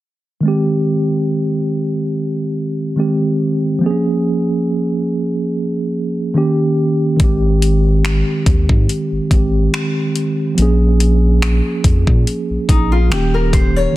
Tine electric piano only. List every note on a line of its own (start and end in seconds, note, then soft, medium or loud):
0.41 2.92 D#3 medium
0.41 2.93 G#3 medium
0.46 2.94 C4 medium
0.46 2.95 G4 medium
2.96 3.81 D#3 medium
2.96 3.82 G#3 soft
2.96 3.82 C4 soft
2.96 3.83 G4 medium
3.79 6.30 F3 medium
3.79 6.31 A#3 medium
3.84 3.90 C4 soft
3.84 6.33 G#4 medium
3.90 6.35 C#4 medium
6.34 7.16 D#3 medium
6.34 7.20 A#3 medium
6.34 7.20 C#4 medium
6.34 7.21 G4 medium
7.17 9.26 D#3 medium
7.17 9.27 G#3 medium
7.22 9.28 C4 medium
7.22 9.29 G4 medium
9.30 10.57 D#3 soft
9.30 10.58 G#3 soft
9.30 10.58 C4 soft
9.30 10.59 G4 medium
10.55 13.06 F3 medium
10.55 13.07 A#3 medium
10.60 13.08 C#4 medium
10.60 13.10 G#4 medium
13.10 13.91 D#3 medium
13.10 13.96 A#3 medium
13.10 13.96 C#4 medium
13.10 13.97 G4 medium
13.93 13.97 D#3 medium